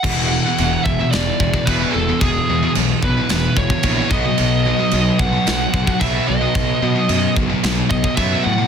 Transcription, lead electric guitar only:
X:1
M:4/4
L:1/8
Q:1/4=111
K:Emix
V:1 name="Lead electric guitar"
f3 e d2 B A | G2 z B2 c2 ^d- | ^d3 f3 e d- | ^d3 z2 d e f |]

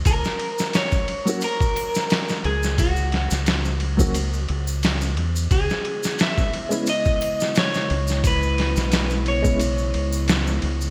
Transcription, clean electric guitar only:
X:1
M:4/4
L:1/8
Q:"Swing 16ths" 1/4=88
K:C#dor
V:1 name="Clean electric guitar"
A2 c2 A3 G | F3 z4 z | G2 e2 d2 c2 | B3 c3 z2 |]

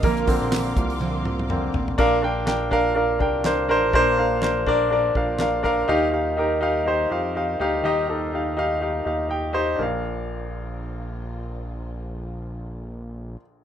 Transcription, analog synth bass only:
X:1
M:4/4
L:1/16
Q:"Swing 16ths" 1/4=123
K:Bb
V:1 name="Analog synth bass" clef=bass
B,,,3 B,,,3 C,,8 A,,,2 | B,,,8- B,,,2 C,,4 A,,,2 | B,,,8- B,,,2 B,,,6 | E,,8- E,,2 F,,4 D,,2 |
E,,8- E,,2 E,,6 | B,,,16- | B,,,16 |]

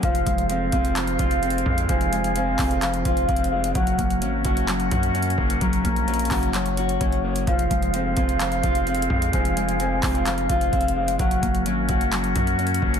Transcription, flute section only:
X:1
M:4/4
L:1/8
Q:1/4=129
K:Fphr
V:1 name="Flute section"
[CFAf]8- | [CFAf]8 | [DGBg]8- | [DGBg]8 |
[CFAf]8- | [CFAf]8 | [DGBg]8 |]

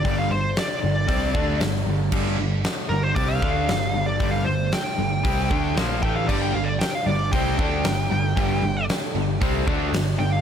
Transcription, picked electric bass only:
X:1
M:4/4
L:1/8
Q:1/4=115
K:Cdor
V:1 name="Picked electric bass" clef=bass
G,,, G,,, z G,,, C,, D,, G,,, G,,, | G,,, G,,, z G,,, C,, D,, G,,, G,,, | G,,, G,,, z G,,, C,, D,, B,,, A,,, | G,,, G,,, z G,,, C,, D,, G,,, G,,, |
G,,, G,,, z G,,, C,, D,, G,,, G,,, |]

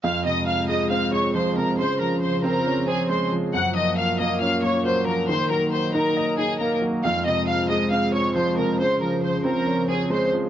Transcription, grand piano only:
X:1
M:4/4
L:1/8
Q:1/4=137
K:Fphr
V:1 name="Grand piano" clef=bass
F,, C,2 A, C A, F, C, | D, F,2 C D C A, F, | G,, F,2 B, D B, G, F, | E, G,2 E e E B, G, |
F,, C,2 A, C A, F, C, | D, F,2 C D C A, F, |]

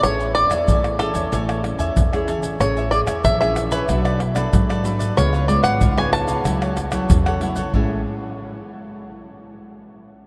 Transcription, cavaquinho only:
X:1
M:4/4
L:1/16
Q:1/4=93
K:A
V:1 name="Cavaquinho"
[Aceg] [ceg] z [ceg] [Aeg]2 [Aceg] [ceg] [Aceg] [ceg] z [ceg]2 [ceg] [Aceg] [ceg] | [Aceg] [ceg]2 [ceg] [Aceg] [ceg]2 [ceg] [DABd] [ABd] z [ABd]2 [ABd] [DABd] [ABd] | [^EBc^e] [Bce]2 [Bce] [EBce] [Bce]2 [Bce] [=EAcf] [Acf] z [Acf]2 [Acf] [EAcf] [Acf] | [Aceg]2 z12 z2 |]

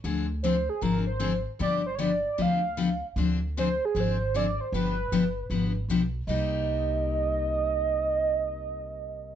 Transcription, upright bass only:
X:1
M:4/4
L:1/8
Q:"Swing" 1/4=154
K:Cm
V:1 name="Upright bass" clef=bass
D,,4 A,,,4 | G,,,4 D,,4 | D,,4 A,,,4 | G,,,2 G,,,2 A,,,2 =B,,,2 |
C,,8- | C,,8 |]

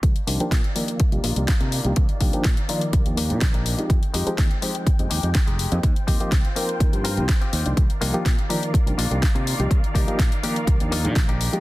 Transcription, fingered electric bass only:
X:1
M:4/4
L:1/16
Q:1/4=124
K:Cm
V:1 name="Fingered electric bass" clef=bass
C,, z C,, z B,, z4 C,, B,,, C,, z C, z C,, | C,, z C,, z B,, z3 C,, E,,2 B,, B,,,3 z | F,, z F,, z E,, z4 F,, E,, F,, z F,,, z F,, | E,, z E,, z C,, z3 E,, G,,2 C,, z2 E,, C,, |
C,, z C,, z B,, z4 C,, B,,, C,, z C, z C,, | C,, z C,, z B,, z3 C,, E,,2 B,, B,,,3 z |]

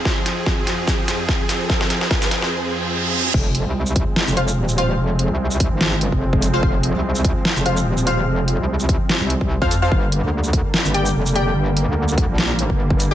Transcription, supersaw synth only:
X:1
M:4/4
L:1/8
Q:"Swing 16ths" 1/4=146
K:Fdor
V:1 name="Supersaw synth" clef=bass
[F,,F,CA]8- | [F,,F,CA]8 | [F,A,C]8- | [F,A,C]8- |
[F,A,C]8- | [F,A,C]8 | [D,G,B,]8- | [D,G,B,]8 |]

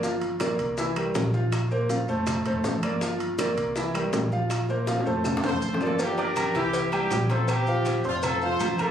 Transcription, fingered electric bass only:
X:1
M:4/4
L:1/8
Q:1/4=161
K:F
V:1 name="Fingered electric bass" clef=bass
G,,,3 C,,3 B,,,2- | B,,,3 F,,,2 F,,, G,,,2- | G,,,3 C,,3 B,,,2- | B,,,3 F,,,2 F,,, G,,,2- |
G,,,3 C,,3 B,,,2- | B,,,3 F,,,3 G,,,2 |]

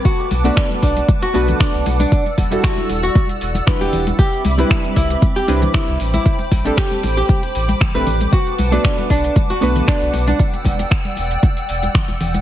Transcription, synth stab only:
X:1
M:4/4
L:1/16
Q:"Swing 16ths" 1/4=116
K:Em
V:1 name="Synth stab"
z3 [A,B,DFB]6- [A,B,DFB] [A,B,DFB]6 | z3 [G,DEFA]8- [G,DEFA] [G,DEFB]4 | z3 [G,CDEB]6- [G,CDEB] [G,CDEB]4 z2 | z3 [A,CDGA]8- [A,CDGA] z [A,CDGB] z2 |
z3 [A,B,DFB]6- [A,B,DFB] [A,B,DFB]6 | z16 |]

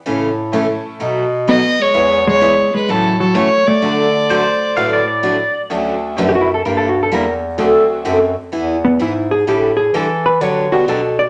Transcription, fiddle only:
X:1
M:4/4
L:1/8
Q:"Swing" 1/4=128
K:D
V:1 name="Fiddle"
z6 ^d c- | c c2 B A A c d- | d6- d z | z8 |
z8 | z8 |]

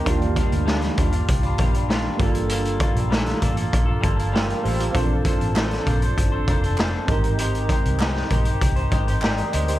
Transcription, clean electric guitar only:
X:1
M:4/4
L:1/16
Q:1/4=98
K:Gm
V:1 name="Clean electric guitar"
[E,G,DF]2 [E,G,DF]2 [G,DF]2 [E,G,DF] [G,DF]2 [G,DF] [E,G,DF] [G,DF] [E,G,DF]2 [G,B,FA]2 | [G,B,FA]2 [G,B,FA]2 [G,B,FA]2 [G,B,FA] [B,FA]2 [B,FA] [G,B,FA] [B,FA] [G,B,FA]2 [G,B,FA]2 | [B,DAc]2 [B,DAc]2 [B,DAc]2 [B,DAc] [DAc]2 [DAc] [B,DAc] [DAc] [B,DAc]2 [_A,EGc]2 | [_A,EGc]2 [A,EGc]2 [A,EGc]2 [A,EGc] [EGc]2 [EGc] [A,EGc] [EGc] [A,EGc]2 [A,EGc]2 |]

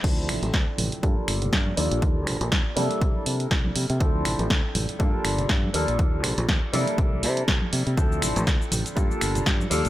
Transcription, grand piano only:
X:1
M:4/4
L:1/8
Q:"Swing 16ths" 1/4=121
K:Dm
V:1 name="Grand piano"
[F,CDEA]4 [G,B,DFA]3 [G,B,DFA]- | [G,B,DFA]3 [G,B,DEA]4- [G,B,DEA] | [F,CDEA]4 [G,B,DFA]3 [G,B,DFA]- | [G,B,DFA]3 [G,B,DEA]4- [G,B,DEA] |
[F,CDEA]4 [G,B,DFA]3 [G,B,DFA] |]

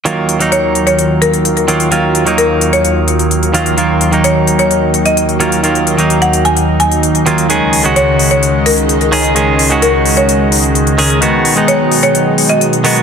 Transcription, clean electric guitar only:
X:1
M:4/4
L:1/16
Q:1/4=129
K:Ebm
V:1 name="Clean electric guitar"
[E,G,B,F]3 [E,G,B,E]8- [E,G,B,E]3 [E,G,B,F]2 | [E,G,B,F]3 [E,G,B,E]8- [E,G,B,E]3 [E,G,B,F]2 | [E,G,B,F]3 [E,G,B,E]8- [E,G,B,E]3 [E,G,B,F]2 | [E,G,B,F]3 [E,G,B,E]8- [E,G,B,E]3 [E,G,B,F]2 |
[E,A,DA]3 [E,A,DG]8- [E,A,DG]3 [E,A,DA]2 | [E,A,DA]3 [E,A,DG]8- [E,A,DG]3 [E,A,DA]2 | [^D,^G,=B,^F]3 [D,G,B,^D]8- [D,G,B,D]3 [D,G,B,F]2 |]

